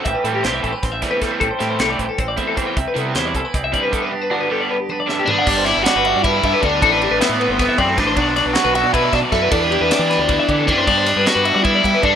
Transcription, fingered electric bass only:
X:1
M:7/8
L:1/16
Q:1/4=155
K:G
V:1 name="Fingered electric bass" clef=bass
A,,, z A,,2 C,,2 A,,, z A,,,2 z4 | A,,, z A,,2 C,,2 A,,, z A,,,2 z4 | C,, z C,2 E,,2 C,, z C,,2 z4 | z12 z2 |
G,,,3 G,,, z G,,,2 G,,3 G,, z D,,2 | A,,,3 A,,, z A,,2 G,,,2 z F,,2 A,,,2 | B,,,3 B,,, z B,,,2 B,,3 B,, z F,,2 | E,,3 E,, z E,2 D,,2 z D,2 F,,2 |
G,,3 G,, z G,,2 G,3 G, z G,,2 |]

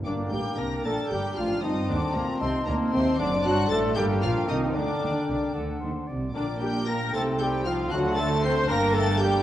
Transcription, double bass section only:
X:1
M:6/8
L:1/8
Q:3/8=76
K:Gm
V:1 name="Double bass section" clef=bass
G,,, A,,, C,, B,,, G,,, A,,, | G,,, E,, D,, C,, D,, E,, | ^F,,, G,,, A,,, G,,, B,,, C,, | D,, E,, C,, D,, E,, C,, |
B,,,3 C,,3 | D,,3 G,,,3 |]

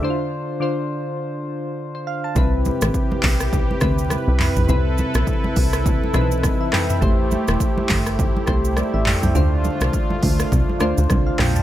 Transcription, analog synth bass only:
X:1
M:4/4
L:1/16
Q:"Swing 16ths" 1/4=103
K:C
V:1 name="Analog synth bass" clef=bass
z16 | C,,3 A,,, z2 B,,,4 D,,3 C,,2 B,,, | C,,3 B,,, z2 C,,4 B,,,3 z3 | A,,,3 E,,, z2 G,,,4 C,,3 A,,,2 C,, |
D,,3 C,, z2 D,,2 C,, z D,, D,, C,,2 B,,,2 |]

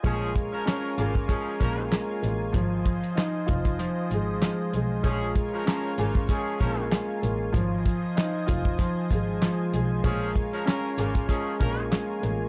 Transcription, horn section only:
X:1
M:4/4
L:1/16
Q:"Swing 16ths" 1/4=96
K:Bbm
V:1 name="Horn section"
[F,DA]2 z [F,DB] [F,DB]2 [D,B,F]2 [F,DA]2 [F,DB]2 z4 | z16 | [F,DA]2 z [F,DB] [F,DB]2 [D,B,F]2 [F,DA]2 [F,DB]2 z4 | z16 |
[F,DA]2 z [F,DB] [F,DB]2 [D,B,F]2 [F,DA]2 [F,DB]2 z4 |]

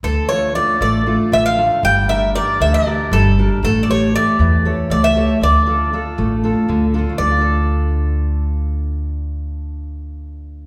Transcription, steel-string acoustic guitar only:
X:1
M:7/8
L:1/8
Q:1/4=118
K:Dm
V:1 name="Steel-string acoustic guitar"
D, [A,DF] [A,DF] A, [A,DF] D, [A,DF] | G, [DGB] [DGB] D, [DGB] G, [DGB] | A, [GA^c] [GAe] E, [GAc] A, [GAc] | D, [DFA] [DFA] A, [DFA] D, [DFA] |
[D,A,DFA]6- [D,A,DFA]- | [D,A,DFA]6- [D,A,DFA] |]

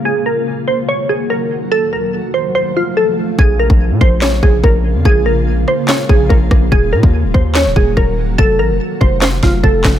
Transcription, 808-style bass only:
X:1
M:4/4
L:1/16
Q:1/4=144
K:Bbm
V:1 name="808-style bass" clef=bass
z16 | z16 | B,,,3 B,,,2 B,, B,,,4 B,,,2 B,,,3 F,, | B,,,6 z4 B,,,2 B,,,2 B,,,2 |
E,,,2 B,, E,,2 D,,, E,,3 D,,, E,,,2 E,,,4 | F,,,2 =A,,, F,,, z2 F,,,4 F,,,2 F,,,2 F,,,2 |]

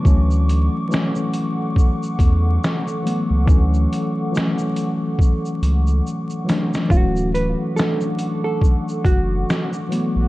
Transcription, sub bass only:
X:1
M:4/4
L:1/16
Q:"Swing 16ths" 1/4=70
K:D
V:1 name="Sub bass" clef=bass
D,,3 z6 z E,,2 z3 C,, | D,,2 z8 C,,2 z4 | D,,,3 z6 z F,,,2 z3 _B,,, |]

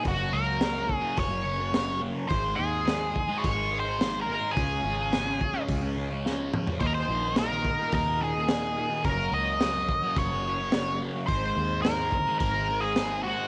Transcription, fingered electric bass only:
X:1
M:4/4
L:1/8
Q:1/4=107
K:Gblyd
V:1 name="Fingered electric bass" clef=bass
G,,, D,,3 G,,,4 | A,,, E,,3 A,,,4 | D,, A,,,3 D,,4 | E,, B,,,3 E,,4 |
G,,, D,,3 G,,,4 | A,,, E,,3 A,,,4 |]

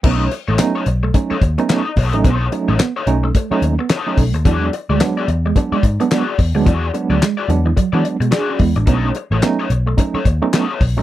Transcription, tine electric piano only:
X:1
M:4/4
L:1/16
Q:"Swing 16ths" 1/4=109
K:Bmix
V:1 name="Tine electric piano"
z16 | z16 | z16 | z12 [=DG] [CF] [B,E] [G,D]- |
[G,=D] z12 z3 |]
V:2 name="Tine electric piano"
[F,A,CD]2 z2 [F,A,CD]2 z2 [F,A,CD] z2 [F,A,CD]2 z2 [F,A,CD] | z2 [F,A,CD]2 z2 [F,A,CD] z2 [F,A,CD]2 z2 [F,A,CD] z2 | [F,G,B,=D]2 z2 [F,G,B,D]2 z2 [F,G,B,D] z2 [F,G,B,D]2 z2 [F,G,B,D] | z2 [F,G,B,=D]2 z2 [F,G,B,D] z2 [F,G,B,D]2 z4 z |
[F,A,CD]2 z2 [F,A,CD]2 z2 [F,A,CD] z2 [F,A,CD]2 z2 [F,A,CD] |]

